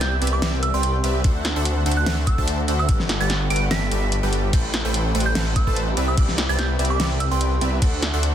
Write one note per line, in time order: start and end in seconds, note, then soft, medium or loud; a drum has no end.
0.00 0.20 C2 loud
0.00 1.21 C3 medium
0.00 1.21 G3 medium
0.00 1.23 B3 medium
0.00 0.19 C4 medium
0.00 1.21 E4 medium
0.00 0.19 G4 medium
0.00 0.19 B4 medium
0.00 0.19 D5 medium
0.00 0.19 E5 loud
0.00 0.15 G6 medium
0.00 snare medium
0.00 closed hi-hat medium
0.00 downlifter medium
0.22 0.40 C2 loud
0.22 0.40 C4 loud
0.22 0.40 G4 medium
0.22 0.40 B4 medium
0.22 0.40 D5 medium
0.22 0.40 E5 loud
0.22 closed hi-hat soft
0.27 closed hi-hat medium
0.33 0.45 D6 medium
0.42 0.72 C2 loud
0.42 0.71 C4 medium
0.42 0.71 G4 medium
0.42 0.71 B4 medium
0.42 0.71 D5 medium
0.42 0.71 E5 loud
0.42 snare loud
0.42 closed hi-hat medium
0.63 0.72 E6 medium
0.63 closed hi-hat medium
0.74 1.02 C2 loud
0.74 0.96 C4 medium
0.74 0.96 G4 medium
0.74 0.96 B4 medium
0.74 0.96 D5 medium
0.74 0.96 G5 loud
0.74 1.04 C6 medium
0.83 closed hi-hat medium
1.04 1.23 C2 loud
1.04 1.22 C4 medium
1.04 1.22 G4 medium
1.04 1.22 B4 medium
1.04 1.22 D5 medium
1.04 1.22 E5 loud
1.04 closed hi-hat medium
1.24 1.54 D2 medium
1.24 4.50 D3 medium
1.24 2.87 A3 medium
1.24 2.87 C4 medium
1.24 1.53 D4 medium
1.24 4.50 F#4 medium
1.24 1.53 A4 medium
1.24 1.53 C5 medium
1.24 1.53 F#5 medium
1.24 kick loud
1.24 closed hi-hat medium
1.45 snare medium
1.45 closed hi-hat medium
1.56 1.84 D2 loud
1.56 1.84 D4 medium
1.56 1.84 A4 medium
1.56 1.84 C5 medium
1.56 1.84 E5 medium
1.56 1.84 F#5 loud
1.65 closed hi-hat medium
1.86 2.05 D2 loud
1.86 2.04 D4 medium
1.86 2.04 A4 medium
1.86 2.04 C5 medium
1.86 2.04 E5 medium
1.86 2.04 F#5 loud
1.86 closed hi-hat soft
1.92 closed hi-hat medium
1.97 2.09 F#6 loud
2.06 2.36 D2 loud
2.06 2.36 D4 loud
2.06 2.36 A4 medium
2.06 2.36 C5 medium
2.06 2.36 E5 medium
2.06 2.36 F#5 loud
2.06 snare loud
2.06 closed hi-hat medium
2.27 2.41 E6 medium
2.27 kick loud
2.27 closed hi-hat medium
2.38 2.66 D2 loud
2.38 2.60 D4 loud
2.38 2.60 A4 medium
2.38 2.61 C5 medium
2.38 2.60 E5 medium
2.38 2.61 A5 loud
2.38 kick medium
2.48 closed hi-hat medium
2.68 2.87 D2 loud
2.68 2.87 D4 medium
2.68 2.87 A4 medium
2.68 2.87 C5 medium
2.68 2.87 E5 medium
2.68 2.87 F#5 medium
2.68 closed hi-hat medium
2.79 2.92 E6 medium
2.89 3.18 G1 medium
2.89 3.18 G3 medium
2.89 7.78 G3 medium
2.89 4.52 B3 medium
2.89 3.18 G4 medium
2.89 3.18 A4 medium
2.89 3.18 B4 medium
2.89 3.18 F#5 medium
2.89 kick loud
2.89 closed hi-hat medium
3.00 snare soft
3.09 snare medium
3.09 closed hi-hat medium
3.20 3.49 G1 loud
3.20 3.48 G3 loud
3.20 3.48 G4 medium
3.20 3.48 A4 medium
3.20 3.48 B4 medium
3.20 3.48 F#5 loud
3.20 3.28 A6 medium
3.30 snare medium
3.30 closed hi-hat medium
3.50 3.69 G1 loud
3.50 3.69 G3 medium
3.50 3.69 G4 medium
3.50 3.69 A4 medium
3.50 3.69 B4 medium
3.50 3.69 F#5 loud
3.50 3.69 D7 medium
3.50 closed hi-hat soft
3.56 closed hi-hat medium
3.71 3.90 G1 loud
3.71 3.90 G3 loud
3.71 3.90 G4 medium
3.71 3.90 A4 medium
3.71 3.90 B4 medium
3.71 3.90 E5 loud
3.71 4.12 B6 medium
3.71 snare loud
3.71 closed hi-hat medium
3.91 4.21 G1 loud
3.91 4.21 G3 medium
3.91 4.21 G4 medium
3.91 4.21 A4 medium
3.91 4.21 B4 medium
3.91 4.21 E5 loud
3.91 closed hi-hat medium
4.12 closed hi-hat medium
4.23 4.51 G1 loud
4.23 4.51 G3 medium
4.23 4.51 G4 medium
4.23 4.51 A4 medium
4.23 4.51 B4 medium
4.23 4.51 G5 loud
4.33 closed hi-hat medium
4.53 4.83 A1 medium
4.53 7.79 C3 medium
4.53 4.82 A3 medium
4.53 5.96 A3 medium
4.53 7.79 E4 medium
4.53 4.82 A4 medium
4.53 4.82 B4 medium
4.53 4.82 C5 medium
4.53 4.82 G5 medium
4.53 kick loud
4.53 closed hi-hat medium
4.53 crash soft
4.74 snare medium
4.74 closed hi-hat medium
4.85 5.13 A1 loud
4.85 5.13 A3 medium
4.85 5.13 A4 medium
4.85 5.13 B4 medium
4.85 5.13 C5 medium
4.85 5.13 G5 loud
4.94 closed hi-hat medium
5.15 5.33 A1 loud
5.15 5.33 A3 medium
5.15 5.33 A4 medium
5.15 5.33 B4 medium
5.15 5.33 C5 medium
5.15 5.33 G5 loud
5.15 closed hi-hat soft
5.20 closed hi-hat medium
5.26 5.38 G6 medium
5.35 5.65 A1 loud
5.35 5.64 A3 medium
5.35 5.64 A4 medium
5.35 5.64 B4 medium
5.35 5.64 C5 medium
5.35 5.64 F#5 loud
5.35 snare loud
5.35 closed hi-hat medium
5.35 crash soft
5.56 5.69 E6 medium
5.56 kick loud
5.56 closed hi-hat medium
5.67 5.95 A1 loud
5.67 5.89 A3 loud
5.67 5.89 A4 medium
5.67 5.89 B4 medium
5.67 5.89 C5 medium
5.67 5.89 A5 loud
5.67 kick medium
5.76 closed hi-hat medium
5.97 6.16 C2 medium
5.97 7.80 B3 medium
5.97 6.15 C4 medium
5.97 6.15 G4 medium
5.97 6.15 B4 medium
5.97 6.15 D5 medium
5.97 6.15 E5 medium
5.97 closed hi-hat medium
6.08 6.20 E6 medium
6.18 6.47 C2 medium
6.18 6.47 C4 medium
6.18 6.47 G4 medium
6.18 6.47 D5 medium
6.18 kick loud
6.18 closed hi-hat medium
6.18 crash medium
6.29 snare soft
6.38 snare medium
6.38 closed hi-hat medium
6.49 6.77 C2 loud
6.49 6.77 C4 medium
6.49 6.77 G4 medium
6.49 6.77 B4 medium
6.49 6.77 D5 medium
6.49 6.77 E5 loud
6.49 6.57 A6 loud
6.59 6.72 G6 medium
6.59 snare medium
6.59 closed hi-hat medium
6.79 6.98 C2 loud
6.79 6.98 C4 medium
6.79 6.97 G4 medium
6.79 6.97 B4 medium
6.79 6.98 D5 medium
6.79 6.98 E5 loud
6.79 closed hi-hat medium
6.85 closed hi-hat medium
6.90 7.03 D6 medium
7.00 7.29 C2 loud
7.00 7.29 C4 loud
7.00 7.29 G4 medium
7.00 7.29 B4 medium
7.00 7.29 D5 medium
7.00 7.29 E5 loud
7.00 snare loud
7.00 closed hi-hat medium
7.00 crash soft
7.20 7.29 E6 medium
7.20 closed hi-hat medium
7.31 7.59 C2 loud
7.31 7.54 C4 medium
7.31 7.54 G4 medium
7.31 7.54 B4 medium
7.31 7.54 D5 medium
7.31 7.54 G5 loud
7.31 7.61 C6 medium
7.41 closed hi-hat medium
7.61 7.80 C2 medium
7.61 7.80 C4 medium
7.61 7.80 G4 medium
7.61 7.80 B4 medium
7.61 7.80 D5 medium
7.61 7.80 E5 loud
7.61 closed hi-hat medium
7.82 8.11 D2 medium
7.82 8.35 D3 medium
7.82 8.35 A3 medium
7.82 8.35 C4 medium
7.82 8.11 D4 medium
7.82 8.35 F#4 medium
7.82 8.11 A4 medium
7.82 8.11 C5 medium
7.82 8.11 E5 medium
7.82 8.11 F#5 medium
7.82 kick loud
7.82 closed hi-hat medium
7.82 crash soft
8.03 snare medium
8.03 closed hi-hat medium
8.14 8.35 D2 loud
8.14 8.35 D4 medium
8.14 8.35 A4 medium
8.14 8.35 C5 medium
8.14 8.35 E5 medium
8.14 8.35 F#5 loud
8.23 closed hi-hat medium